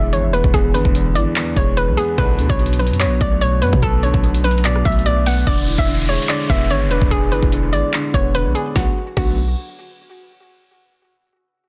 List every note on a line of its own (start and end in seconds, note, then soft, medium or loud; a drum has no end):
0.00 0.14 E1 loud
0.00 0.13 E2 loud
0.00 0.13 D3 medium
0.00 0.54 E3 medium
0.00 0.95 G#3 medium
0.13 0.30 G#1 loud
0.13 0.52 E2 medium
0.13 0.30 C#5 medium
0.13 closed hi-hat medium
0.28 0.43 E1 loud
0.33 1.36 B3 medium
0.33 0.51 B4 medium
0.33 closed hi-hat medium
0.44 0.53 E1 loud
0.44 kick loud
0.54 0.76 E1 loud
0.54 0.93 E2 medium
0.54 0.71 G#4 loud
0.54 kick loud
0.54 closed hi-hat medium
0.74 0.85 G#1 loud
0.74 1.77 D3 medium
0.74 1.13 B4 medium
0.74 closed hi-hat medium
0.85 1.17 E1 loud
0.85 kick medium
0.95 1.34 E2 medium
0.95 closed hi-hat medium
1.15 1.26 G#1 loud
1.15 2.18 E3 medium
1.15 1.54 D5 medium
1.15 closed hi-hat medium
1.36 1.76 E2 medium
1.36 clap loud
1.36 closed hi-hat medium
1.56 1.89 E1 loud
1.56 2.18 G#3 medium
1.56 1.74 C#5 medium
1.56 kick medium
1.56 closed hi-hat medium
1.77 2.18 E2 medium
1.77 1.95 B4 medium
1.77 closed hi-hat medium
1.88 1.97 B1 loud
1.97 2.18 B3 medium
1.97 2.15 G#4 medium
1.97 closed hi-hat medium
2.18 2.48 B1 loud
2.18 2.40 B1 loud
2.18 2.48 A2 medium
2.18 2.58 B2 loud
2.18 2.48 D3 loud
2.18 2.48 B4 loud
2.18 kick loud
2.18 closed hi-hat medium
2.39 2.49 D2 loud
2.39 3.41 D3 medium
2.39 closed hi-hat medium
2.49 2.92 B1 loud
2.49 2.58 C#5 medium
2.49 kick loud
2.59 2.99 B2 medium
2.59 closed hi-hat medium
2.66 closed hi-hat medium
2.73 closed hi-hat medium
2.79 3.83 F#3 medium
2.79 2.97 B4 medium
2.79 closed hi-hat medium
2.87 closed hi-hat medium
2.91 3.07 F#2 loud
2.91 closed hi-hat medium
3.00 3.40 B2 medium
3.00 3.18 C#5 medium
3.00 clap loud
3.00 closed hi-hat loud
3.06 3.20 B1 medium
3.21 3.63 B1 loud
3.21 4.24 A3 medium
3.21 3.39 D5 medium
3.21 kick loud
3.21 closed hi-hat medium
3.41 3.81 B2 medium
3.41 3.59 C#5 loud
3.41 closed hi-hat medium
3.62 3.72 F#2 loud
3.62 4.65 B3 medium
3.62 3.80 B4 medium
3.62 closed hi-hat medium
3.73 3.82 B2 loud
3.73 kick loud
3.82 4.13 B1 loud
3.82 4.22 B2 loud
3.82 4.00 A4 loud
3.82 kick loud
3.82 closed hi-hat medium
4.03 5.06 D3 medium
4.03 4.42 C#5 medium
4.03 closed hi-hat medium
4.14 4.82 B1 loud
4.14 kick medium
4.24 4.63 B2 medium
4.24 closed hi-hat medium
4.34 closed hi-hat loud
4.44 5.47 F#3 medium
4.44 4.62 B4 medium
4.44 closed hi-hat medium
4.51 closed hi-hat medium
4.58 closed hi-hat medium
4.65 5.04 B2 medium
4.65 4.83 D5 medium
4.65 clap loud
4.65 closed hi-hat medium
4.76 cross-stick medium
4.85 5.44 B1 loud
4.85 5.47 A3 medium
4.85 5.03 E5 medium
4.85 kick loud
4.85 closed hi-hat medium
4.92 closed hi-hat medium
4.99 closed hi-hat soft
5.06 5.47 B2 medium
5.06 5.23 D5 medium
5.06 closed hi-hat medium
5.26 5.47 B3 medium
5.26 5.44 F#5 medium
5.26 open hi-hat medium
5.47 5.77 E1 loud
5.47 5.86 D3 medium
5.47 5.76 D5 medium
5.47 kick loud
5.47 closed hi-hat medium
5.47 downlifter medium
5.67 6.70 E3 medium
5.67 closed hi-hat medium
5.78 6.18 E1 loud
5.78 5.87 E5 medium
5.78 kick medium
5.88 6.28 D3 medium
5.88 closed hi-hat medium
5.95 closed hi-hat medium
6.02 closed hi-hat medium
6.09 7.11 G#3 medium
6.09 6.26 C#5 medium
6.09 closed hi-hat medium
6.15 closed hi-hat medium
6.22 closed hi-hat medium
6.29 6.69 D3 medium
6.29 6.47 D5 medium
6.29 clap loud
6.29 closed hi-hat medium
6.49 6.72 E1 loud
6.49 7.52 B3 medium
6.49 6.67 E5 medium
6.49 kick medium
6.49 closed hi-hat medium
6.70 6.87 G#1 loud
6.70 7.10 D3 medium
6.70 6.88 C#5 medium
6.70 closed hi-hat medium
6.86 7.01 E1 loud
6.91 7.93 D4 medium
6.91 7.09 B4 medium
6.91 closed hi-hat medium
7.02 7.11 E1 loud
7.02 kick loud
7.11 7.33 E1 loud
7.11 7.51 D3 loud
7.11 7.29 G#4 loud
7.11 kick loud
7.11 closed hi-hat medium
7.32 7.42 G#1 loud
7.32 8.35 E3 medium
7.32 7.70 B4 medium
7.32 closed hi-hat medium
7.43 7.74 E1 loud
7.43 kick loud
7.52 7.92 D3 medium
7.52 closed hi-hat medium
7.73 7.83 G#1 loud
7.73 8.76 G#3 medium
7.73 8.11 D5 medium
7.73 closed hi-hat medium
7.93 8.33 D3 medium
7.93 clap loud
7.93 closed hi-hat medium
8.14 8.47 E1 loud
8.14 8.74 B3 medium
8.14 8.32 C#5 medium
8.14 kick loud
8.14 closed hi-hat medium
8.34 8.74 D3 medium
8.34 8.52 B4 loud
8.34 closed hi-hat medium
8.45 8.55 B1 loud
8.55 8.76 D4 medium
8.55 8.73 G#4 medium
8.55 closed hi-hat medium
8.76 8.88 B1 loud
8.76 8.88 D3 medium
8.76 8.88 F#3 medium
8.76 8.88 A3 medium
8.76 8.88 B3 medium
8.76 8.88 F#4 medium
8.76 kick loud
8.76 snare medium
9.17 9.55 B1 loud
9.17 9.36 D3 medium
9.17 9.36 F#3 medium
9.17 9.36 A3 medium
9.17 9.36 B3 loud
9.17 9.36 F#4 medium
9.17 kick loud
9.17 crash medium